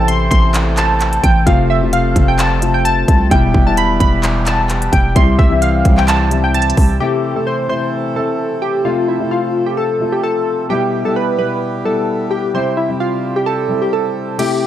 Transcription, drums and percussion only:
0.08 closed hi-hat medium
0.31 kick loud
0.31 closed hi-hat medium
0.54 clap loud
0.54 closed hi-hat medium
0.77 clap loud
0.77 closed hi-hat medium
1.00 clap medium
1.00 closed hi-hat medium
1.13 closed hi-hat medium
1.24 kick medium
1.24 closed hi-hat medium
1.47 kick loud
1.47 closed hi-hat medium
1.93 closed hi-hat medium
2.16 kick loud
2.16 closed hi-hat medium
2.39 clap loud
2.39 closed hi-hat medium
2.62 closed hi-hat medium
2.85 closed hi-hat medium
3.08 kick medium
3.08 closed hi-hat medium
3.31 kick loud
3.31 closed hi-hat medium
3.54 kick loud
3.77 closed hi-hat medium
4.00 kick loud
4.00 closed hi-hat medium
4.23 clap loud
4.23 closed hi-hat medium
4.46 clap loud
4.46 closed hi-hat medium
4.70 clap medium
4.70 closed hi-hat medium
4.82 closed hi-hat medium
4.93 kick medium
4.93 closed hi-hat medium
5.16 kick loud
5.16 closed hi-hat medium
5.39 kick loud
5.62 closed hi-hat medium
5.85 kick loud
5.85 closed hi-hat medium
5.97 clap medium
6.08 clap loud
6.08 closed hi-hat medium
6.31 closed hi-hat medium
6.54 closed hi-hat soft
6.62 closed hi-hat medium
6.70 closed hi-hat medium
6.77 kick medium
6.77 open hi-hat medium
14.39 closed hi-hat medium
14.39 crash loud

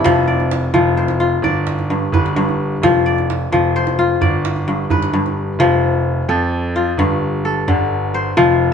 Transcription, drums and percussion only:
0.06 djembe slap medium
0.06 djembe bass medium
0.28 djembe slap soft
0.40 djembe slap soft
0.40 djembe tone medium
0.51 djembe slap medium
0.74 djembe bass medium
1.08 djembe slap soft
1.08 djembe tone soft
1.43 djembe bass medium
1.67 djembe slap medium
1.79 djembe tone soft
1.91 djembe slap soft
2.14 djembe bass medium
2.26 djembe slap soft
2.49 djembe tone soft
2.72 djembe slap soft
2.83 djembe slap medium
2.83 djembe bass medium
2.96 djembe slap soft
3.18 djembe tone soft
3.30 djembe slap medium
3.53 djembe slap soft
3.53 djembe bass medium
3.64 djembe slap soft
3.87 djembe slap soft
3.87 djembe tone soft
4.10 djembe slap soft
4.22 djembe slap soft
4.22 djembe bass medium
4.45 djembe slap medium
4.56 djembe slap soft
4.56 djembe tone soft
4.90 djembe bass medium
5.02 djembe slap medium
5.14 djembe slap soft
5.26 djembe tone medium

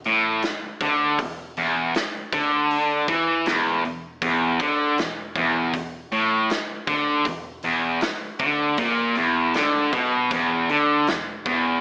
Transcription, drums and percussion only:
0.04 open hi-hat soft
0.42 snare loud
0.42 open hi-hat medium
0.81 kick loud
0.81 open hi-hat soft
1.19 kick medium
1.19 open hi-hat medium
1.57 open hi-hat soft
1.94 snare loud
1.94 open hi-hat medium
2.33 kick loud
2.33 open hi-hat medium
2.70 open hi-hat medium
3.08 kick medium
3.08 open hi-hat soft
3.46 snare loud
3.46 open hi-hat medium
3.85 open hi-hat medium
4.22 kick loud
4.22 open hi-hat medium
4.60 kick loud
4.60 open hi-hat soft
4.98 snare loud
4.98 open hi-hat medium
5.36 kick loud
5.36 open hi-hat soft
5.74 kick medium
5.74 open hi-hat medium
6.12 open hi-hat soft
6.50 snare loud
6.50 open hi-hat medium
6.87 kick loud
6.87 open hi-hat medium
7.25 kick medium
7.25 open hi-hat medium
7.63 open hi-hat soft
8.01 snare loud
8.01 open hi-hat medium
8.39 kick loud
8.39 open hi-hat medium
8.77 kick loud
8.77 open hi-hat medium
9.15 open hi-hat soft
9.54 snare loud
9.54 open hi-hat medium
9.93 kick medium
9.93 open hi-hat soft
10.31 kick loud
10.31 open hi-hat medium
10.69 open hi-hat soft
11.07 snare loud
11.07 open hi-hat medium
11.46 kick loud
11.46 open hi-hat soft

